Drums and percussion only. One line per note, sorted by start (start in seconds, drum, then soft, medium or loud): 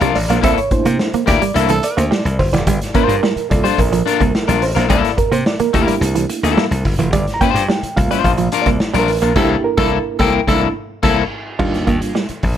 0.01 closed hi-hat medium
0.15 open hi-hat medium
0.29 snare soft
0.29 closed hi-hat soft
0.43 kick loud
0.43 closed hi-hat loud
0.58 closed hi-hat soft
0.71 kick medium
0.71 closed hi-hat medium
0.85 closed hi-hat medium
0.99 snare loud
1.14 closed hi-hat medium
1.28 kick medium
1.28 closed hi-hat medium
1.42 closed hi-hat medium
1.56 closed hi-hat medium
1.69 closed hi-hat medium
1.83 closed hi-hat medium
1.98 closed hi-hat medium
2.12 snare loud
2.26 closed hi-hat medium
2.39 kick medium
2.39 open hi-hat medium
2.53 snare soft
2.53 closed hi-hat soft
2.67 kick loud
2.67 closed hi-hat loud
2.81 snare soft
2.81 closed hi-hat soft
2.94 kick medium
2.94 closed hi-hat medium
3.09 closed hi-hat medium
3.23 snare loud
3.37 closed hi-hat medium
3.51 kick medium
3.51 closed hi-hat medium
3.65 closed hi-hat medium
3.78 kick medium
3.78 closed hi-hat medium
3.93 closed hi-hat medium
4.07 closed hi-hat medium
4.21 kick medium
4.21 closed hi-hat soft
4.35 snare loud
4.49 closed hi-hat medium
4.62 open hi-hat medium
4.76 snare soft
4.76 closed hi-hat soft
4.90 kick loud
4.90 closed hi-hat loud
5.05 snare soft
5.05 closed hi-hat medium
5.18 kick medium
5.18 closed hi-hat medium
5.32 closed hi-hat medium
5.46 snare loud
5.60 closed hi-hat medium
5.74 kick medium
5.74 closed hi-hat medium
5.88 closed hi-hat medium
6.02 closed hi-hat medium
6.15 closed hi-hat medium
6.29 closed hi-hat medium
6.44 closed hi-hat soft
6.57 snare loud
6.72 closed hi-hat medium
6.85 kick medium
6.85 open hi-hat medium
6.99 closed hi-hat soft
7.13 kick loud
7.13 closed hi-hat loud
7.27 snare soft
7.27 closed hi-hat soft
7.41 kick medium
7.41 closed hi-hat medium
7.56 closed hi-hat medium
7.70 snare loud
7.83 closed hi-hat medium
7.97 kick medium
7.97 closed hi-hat medium
8.11 closed hi-hat medium
8.24 kick medium
8.24 closed hi-hat medium
8.38 closed hi-hat medium
8.52 closed hi-hat medium
8.66 kick medium
8.66 closed hi-hat medium
8.80 snare loud
8.94 closed hi-hat medium
9.08 open hi-hat medium
9.22 closed hi-hat soft
9.36 kick loud
9.36 snare loud
9.36 crash medium
9.78 kick loud
9.78 snare loud
10.20 kick loud
10.20 snare loud
10.48 kick loud
10.48 snare loud
11.03 kick loud
11.03 snare loud
11.03 crash medium
11.59 kick loud
11.59 crash medium
11.74 snare soft
11.74 closed hi-hat soft
11.87 kick medium
11.87 closed hi-hat medium
12.02 closed hi-hat medium
12.16 snare loud
12.29 closed hi-hat soft
12.43 kick medium
12.43 open hi-hat medium